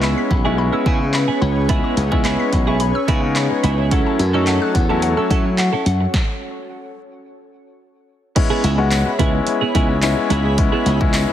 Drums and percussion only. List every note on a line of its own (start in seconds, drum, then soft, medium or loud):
0.02 clap loud
0.31 kick medium
0.86 kick medium
1.14 clap loud
1.69 kick loud
1.69 closed hi-hat medium
1.97 closed hi-hat medium
2.12 kick medium
2.25 clap loud
2.25 closed hi-hat medium
2.53 kick medium
2.53 closed hi-hat medium
2.80 closed hi-hat medium
3.08 kick medium
3.08 closed hi-hat medium
3.36 clap loud
3.36 closed hi-hat medium
3.64 closed hi-hat medium
3.91 kick loud
3.91 closed hi-hat loud
4.19 closed hi-hat medium
4.47 clap loud
4.47 closed hi-hat medium
4.75 kick medium
4.75 closed hi-hat medium
5.02 closed hi-hat medium
5.31 kick medium
5.31 closed hi-hat medium
5.58 clap loud
5.58 closed hi-hat medium
5.86 closed hi-hat medium
6.14 kick loud
6.14 snare medium
8.36 kick loud
8.36 closed hi-hat loud
8.36 crash loud
8.64 closed hi-hat medium
8.91 clap loud
8.91 closed hi-hat medium
8.91 tambourine medium
9.19 kick medium
9.19 closed hi-hat medium
9.47 closed hi-hat medium
9.75 kick medium
9.75 closed hi-hat medium
10.02 clap loud
10.02 closed hi-hat medium
10.02 tambourine medium
10.30 closed hi-hat medium
10.58 kick loud
10.58 closed hi-hat loud
10.86 closed hi-hat medium
11.01 kick medium
11.14 clap loud
11.14 closed hi-hat medium
11.14 tambourine medium